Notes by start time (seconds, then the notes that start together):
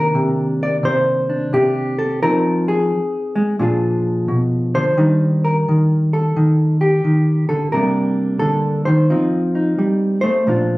Already playing: C3 D#3 A#3 D4 A#4
0.15 C3
0.63 D5
0.83 C3 C5
1.30 D4
1.53 C3 G4
1.99 A4
2.23 F3 C4 D#4 A#4
2.68 G#4
3.35 G#3
3.59 A#2 F3 D4 F4 G#4
4.28 B2
4.75 D3 C5
4.97 D#3 G3 D4 D#4
5.45 A#4
5.68 D#3
6.13 A4
6.36 D#3
6.81 G4
7.04 D#3
7.49 D3 A4
7.72 C3 G3 A#3 D4 A#4
8.39 D3 A4
8.85 D#3 C5
9.10 F3 C4 D#4
9.55 D#4
9.78 G3
10.21 A3 C5
10.47 A#2 F3 D4 F4